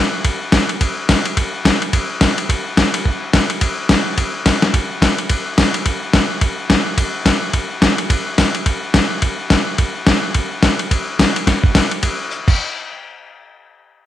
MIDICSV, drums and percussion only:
0, 0, Header, 1, 2, 480
1, 0, Start_track
1, 0, Tempo, 280636
1, 426, Time_signature, 4, 2, 24, 8
1, 24048, End_track
2, 0, Start_track
2, 0, Title_t, "Drums"
2, 420, Note_on_c, 9, 51, 60
2, 421, Note_on_c, 9, 36, 21
2, 591, Note_off_c, 9, 51, 0
2, 592, Note_off_c, 9, 36, 0
2, 894, Note_on_c, 9, 38, 68
2, 894, Note_on_c, 9, 44, 56
2, 894, Note_on_c, 9, 51, 76
2, 900, Note_on_c, 9, 36, 26
2, 1065, Note_off_c, 9, 38, 0
2, 1065, Note_off_c, 9, 44, 0
2, 1065, Note_off_c, 9, 51, 0
2, 1071, Note_off_c, 9, 36, 0
2, 1186, Note_on_c, 9, 51, 41
2, 1357, Note_off_c, 9, 51, 0
2, 1383, Note_on_c, 9, 36, 23
2, 1383, Note_on_c, 9, 51, 61
2, 1554, Note_off_c, 9, 36, 0
2, 1554, Note_off_c, 9, 51, 0
2, 1862, Note_on_c, 9, 38, 74
2, 1862, Note_on_c, 9, 44, 64
2, 1862, Note_on_c, 9, 51, 73
2, 1864, Note_on_c, 9, 36, 25
2, 2033, Note_off_c, 9, 38, 0
2, 2033, Note_off_c, 9, 44, 0
2, 2033, Note_off_c, 9, 51, 0
2, 2035, Note_off_c, 9, 36, 0
2, 2146, Note_on_c, 9, 51, 47
2, 2317, Note_off_c, 9, 51, 0
2, 2344, Note_on_c, 9, 36, 20
2, 2344, Note_on_c, 9, 51, 63
2, 2515, Note_off_c, 9, 36, 0
2, 2515, Note_off_c, 9, 51, 0
2, 2824, Note_on_c, 9, 36, 22
2, 2829, Note_on_c, 9, 38, 72
2, 2829, Note_on_c, 9, 44, 56
2, 2829, Note_on_c, 9, 51, 76
2, 2995, Note_off_c, 9, 36, 0
2, 3000, Note_off_c, 9, 38, 0
2, 3000, Note_off_c, 9, 44, 0
2, 3000, Note_off_c, 9, 51, 0
2, 3112, Note_on_c, 9, 51, 42
2, 3283, Note_off_c, 9, 51, 0
2, 3304, Note_on_c, 9, 36, 24
2, 3305, Note_on_c, 9, 51, 61
2, 3475, Note_off_c, 9, 36, 0
2, 3476, Note_off_c, 9, 51, 0
2, 3778, Note_on_c, 9, 38, 76
2, 3778, Note_on_c, 9, 44, 64
2, 3778, Note_on_c, 9, 51, 69
2, 3782, Note_on_c, 9, 36, 27
2, 3949, Note_off_c, 9, 38, 0
2, 3949, Note_off_c, 9, 44, 0
2, 3949, Note_off_c, 9, 51, 0
2, 3953, Note_off_c, 9, 36, 0
2, 4070, Note_on_c, 9, 51, 47
2, 4241, Note_off_c, 9, 51, 0
2, 4264, Note_on_c, 9, 36, 20
2, 4270, Note_on_c, 9, 51, 62
2, 4435, Note_off_c, 9, 36, 0
2, 4441, Note_off_c, 9, 51, 0
2, 4742, Note_on_c, 9, 36, 21
2, 4744, Note_on_c, 9, 38, 70
2, 4744, Note_on_c, 9, 44, 64
2, 4744, Note_on_c, 9, 51, 71
2, 4913, Note_off_c, 9, 36, 0
2, 4915, Note_off_c, 9, 38, 0
2, 4915, Note_off_c, 9, 44, 0
2, 4915, Note_off_c, 9, 51, 0
2, 5029, Note_on_c, 9, 51, 62
2, 5200, Note_off_c, 9, 51, 0
2, 5226, Note_on_c, 9, 36, 25
2, 5397, Note_off_c, 9, 36, 0
2, 5703, Note_on_c, 9, 38, 73
2, 5703, Note_on_c, 9, 44, 57
2, 5703, Note_on_c, 9, 51, 74
2, 5704, Note_on_c, 9, 36, 25
2, 5874, Note_off_c, 9, 38, 0
2, 5874, Note_off_c, 9, 44, 0
2, 5874, Note_off_c, 9, 51, 0
2, 5875, Note_off_c, 9, 36, 0
2, 5983, Note_on_c, 9, 51, 47
2, 6154, Note_off_c, 9, 51, 0
2, 6179, Note_on_c, 9, 51, 63
2, 6183, Note_on_c, 9, 36, 22
2, 6350, Note_off_c, 9, 51, 0
2, 6354, Note_off_c, 9, 36, 0
2, 6657, Note_on_c, 9, 38, 77
2, 6657, Note_on_c, 9, 44, 54
2, 6657, Note_on_c, 9, 51, 72
2, 6662, Note_on_c, 9, 36, 21
2, 6828, Note_off_c, 9, 38, 0
2, 6828, Note_off_c, 9, 44, 0
2, 6828, Note_off_c, 9, 51, 0
2, 6833, Note_off_c, 9, 36, 0
2, 7143, Note_on_c, 9, 36, 18
2, 7144, Note_on_c, 9, 51, 58
2, 7314, Note_off_c, 9, 36, 0
2, 7315, Note_off_c, 9, 51, 0
2, 7624, Note_on_c, 9, 36, 22
2, 7624, Note_on_c, 9, 38, 67
2, 7624, Note_on_c, 9, 44, 55
2, 7624, Note_on_c, 9, 51, 69
2, 7795, Note_off_c, 9, 36, 0
2, 7795, Note_off_c, 9, 38, 0
2, 7795, Note_off_c, 9, 44, 0
2, 7795, Note_off_c, 9, 51, 0
2, 7908, Note_on_c, 9, 38, 47
2, 7908, Note_on_c, 9, 51, 44
2, 8079, Note_off_c, 9, 38, 0
2, 8079, Note_off_c, 9, 51, 0
2, 8105, Note_on_c, 9, 36, 24
2, 8106, Note_on_c, 9, 51, 57
2, 8276, Note_off_c, 9, 36, 0
2, 8277, Note_off_c, 9, 51, 0
2, 8584, Note_on_c, 9, 36, 24
2, 8590, Note_on_c, 9, 38, 73
2, 8590, Note_on_c, 9, 44, 53
2, 8590, Note_on_c, 9, 51, 73
2, 8755, Note_off_c, 9, 36, 0
2, 8761, Note_off_c, 9, 38, 0
2, 8761, Note_off_c, 9, 44, 0
2, 8761, Note_off_c, 9, 51, 0
2, 8868, Note_on_c, 9, 51, 43
2, 9039, Note_off_c, 9, 51, 0
2, 9057, Note_on_c, 9, 51, 64
2, 9062, Note_on_c, 9, 36, 21
2, 9228, Note_off_c, 9, 51, 0
2, 9233, Note_off_c, 9, 36, 0
2, 9541, Note_on_c, 9, 38, 72
2, 9541, Note_on_c, 9, 44, 58
2, 9541, Note_on_c, 9, 51, 74
2, 9542, Note_on_c, 9, 36, 25
2, 9712, Note_off_c, 9, 38, 0
2, 9712, Note_off_c, 9, 44, 0
2, 9712, Note_off_c, 9, 51, 0
2, 9713, Note_off_c, 9, 36, 0
2, 9822, Note_on_c, 9, 51, 50
2, 9993, Note_off_c, 9, 51, 0
2, 10017, Note_on_c, 9, 51, 63
2, 10020, Note_on_c, 9, 36, 18
2, 10188, Note_off_c, 9, 51, 0
2, 10191, Note_off_c, 9, 36, 0
2, 10493, Note_on_c, 9, 38, 72
2, 10493, Note_on_c, 9, 44, 59
2, 10493, Note_on_c, 9, 51, 68
2, 10497, Note_on_c, 9, 36, 25
2, 10664, Note_off_c, 9, 38, 0
2, 10664, Note_off_c, 9, 44, 0
2, 10664, Note_off_c, 9, 51, 0
2, 10668, Note_off_c, 9, 36, 0
2, 10970, Note_on_c, 9, 51, 59
2, 10973, Note_on_c, 9, 36, 26
2, 11141, Note_off_c, 9, 51, 0
2, 11144, Note_off_c, 9, 36, 0
2, 11453, Note_on_c, 9, 36, 22
2, 11456, Note_on_c, 9, 38, 73
2, 11456, Note_on_c, 9, 44, 53
2, 11456, Note_on_c, 9, 51, 70
2, 11624, Note_off_c, 9, 36, 0
2, 11627, Note_off_c, 9, 38, 0
2, 11627, Note_off_c, 9, 44, 0
2, 11627, Note_off_c, 9, 51, 0
2, 11931, Note_on_c, 9, 36, 23
2, 11933, Note_on_c, 9, 51, 65
2, 12102, Note_off_c, 9, 36, 0
2, 12105, Note_off_c, 9, 51, 0
2, 12409, Note_on_c, 9, 36, 24
2, 12413, Note_on_c, 9, 38, 73
2, 12413, Note_on_c, 9, 44, 57
2, 12413, Note_on_c, 9, 51, 73
2, 12581, Note_off_c, 9, 36, 0
2, 12584, Note_off_c, 9, 38, 0
2, 12584, Note_off_c, 9, 44, 0
2, 12584, Note_off_c, 9, 51, 0
2, 12888, Note_on_c, 9, 51, 58
2, 12889, Note_on_c, 9, 36, 18
2, 13059, Note_off_c, 9, 51, 0
2, 13060, Note_off_c, 9, 36, 0
2, 13372, Note_on_c, 9, 36, 22
2, 13374, Note_on_c, 9, 38, 76
2, 13374, Note_on_c, 9, 44, 65
2, 13374, Note_on_c, 9, 51, 70
2, 13543, Note_off_c, 9, 36, 0
2, 13545, Note_off_c, 9, 38, 0
2, 13545, Note_off_c, 9, 44, 0
2, 13545, Note_off_c, 9, 51, 0
2, 13655, Note_on_c, 9, 51, 47
2, 13826, Note_off_c, 9, 51, 0
2, 13853, Note_on_c, 9, 36, 27
2, 13855, Note_on_c, 9, 51, 67
2, 14024, Note_off_c, 9, 36, 0
2, 14026, Note_off_c, 9, 51, 0
2, 14334, Note_on_c, 9, 36, 22
2, 14334, Note_on_c, 9, 38, 71
2, 14334, Note_on_c, 9, 44, 70
2, 14334, Note_on_c, 9, 51, 73
2, 14505, Note_off_c, 9, 36, 0
2, 14505, Note_off_c, 9, 38, 0
2, 14505, Note_off_c, 9, 44, 0
2, 14505, Note_off_c, 9, 51, 0
2, 14618, Note_on_c, 9, 51, 41
2, 14789, Note_off_c, 9, 51, 0
2, 14812, Note_on_c, 9, 51, 58
2, 14813, Note_on_c, 9, 36, 22
2, 14983, Note_off_c, 9, 51, 0
2, 14984, Note_off_c, 9, 36, 0
2, 15290, Note_on_c, 9, 38, 69
2, 15290, Note_on_c, 9, 44, 66
2, 15290, Note_on_c, 9, 51, 74
2, 15293, Note_on_c, 9, 36, 27
2, 15461, Note_off_c, 9, 38, 0
2, 15461, Note_off_c, 9, 44, 0
2, 15461, Note_off_c, 9, 51, 0
2, 15464, Note_off_c, 9, 36, 0
2, 15770, Note_on_c, 9, 51, 59
2, 15775, Note_on_c, 9, 36, 20
2, 15941, Note_off_c, 9, 51, 0
2, 15946, Note_off_c, 9, 36, 0
2, 16253, Note_on_c, 9, 38, 74
2, 16253, Note_on_c, 9, 44, 68
2, 16253, Note_on_c, 9, 51, 67
2, 16256, Note_on_c, 9, 36, 26
2, 16424, Note_off_c, 9, 38, 0
2, 16424, Note_off_c, 9, 44, 0
2, 16424, Note_off_c, 9, 51, 0
2, 16427, Note_off_c, 9, 36, 0
2, 16734, Note_on_c, 9, 51, 58
2, 16738, Note_on_c, 9, 36, 26
2, 16905, Note_off_c, 9, 51, 0
2, 16909, Note_off_c, 9, 36, 0
2, 17216, Note_on_c, 9, 38, 76
2, 17216, Note_on_c, 9, 44, 58
2, 17216, Note_on_c, 9, 51, 73
2, 17219, Note_on_c, 9, 36, 27
2, 17387, Note_off_c, 9, 38, 0
2, 17387, Note_off_c, 9, 44, 0
2, 17387, Note_off_c, 9, 51, 0
2, 17390, Note_off_c, 9, 36, 0
2, 17694, Note_on_c, 9, 51, 56
2, 17700, Note_on_c, 9, 36, 21
2, 17865, Note_off_c, 9, 51, 0
2, 17871, Note_off_c, 9, 36, 0
2, 18174, Note_on_c, 9, 38, 72
2, 18174, Note_on_c, 9, 44, 63
2, 18174, Note_on_c, 9, 51, 67
2, 18179, Note_on_c, 9, 36, 23
2, 18345, Note_off_c, 9, 38, 0
2, 18345, Note_off_c, 9, 44, 0
2, 18345, Note_off_c, 9, 51, 0
2, 18350, Note_off_c, 9, 36, 0
2, 18462, Note_on_c, 9, 51, 43
2, 18633, Note_off_c, 9, 51, 0
2, 18662, Note_on_c, 9, 36, 24
2, 18666, Note_on_c, 9, 51, 55
2, 18833, Note_off_c, 9, 36, 0
2, 18837, Note_off_c, 9, 51, 0
2, 19143, Note_on_c, 9, 36, 22
2, 19147, Note_on_c, 9, 38, 76
2, 19147, Note_on_c, 9, 44, 56
2, 19147, Note_on_c, 9, 51, 70
2, 19314, Note_off_c, 9, 36, 0
2, 19318, Note_off_c, 9, 38, 0
2, 19318, Note_off_c, 9, 44, 0
2, 19318, Note_off_c, 9, 51, 0
2, 19434, Note_on_c, 9, 51, 48
2, 19605, Note_off_c, 9, 51, 0
2, 19619, Note_on_c, 9, 36, 26
2, 19623, Note_on_c, 9, 38, 41
2, 19623, Note_on_c, 9, 51, 61
2, 19790, Note_off_c, 9, 36, 0
2, 19794, Note_off_c, 9, 38, 0
2, 19794, Note_off_c, 9, 51, 0
2, 19901, Note_on_c, 9, 36, 52
2, 20072, Note_off_c, 9, 36, 0
2, 20095, Note_on_c, 9, 38, 71
2, 20095, Note_on_c, 9, 44, 62
2, 20095, Note_on_c, 9, 51, 77
2, 20099, Note_on_c, 9, 36, 24
2, 20267, Note_off_c, 9, 38, 0
2, 20267, Note_off_c, 9, 44, 0
2, 20267, Note_off_c, 9, 51, 0
2, 20270, Note_off_c, 9, 36, 0
2, 20378, Note_on_c, 9, 51, 43
2, 20549, Note_off_c, 9, 51, 0
2, 20573, Note_on_c, 9, 51, 60
2, 20576, Note_on_c, 9, 36, 17
2, 20744, Note_off_c, 9, 51, 0
2, 20747, Note_off_c, 9, 36, 0
2, 21052, Note_on_c, 9, 44, 56
2, 21223, Note_off_c, 9, 44, 0
2, 21341, Note_on_c, 9, 36, 55
2, 21347, Note_on_c, 9, 49, 57
2, 21512, Note_off_c, 9, 36, 0
2, 21518, Note_off_c, 9, 49, 0
2, 24048, End_track
0, 0, End_of_file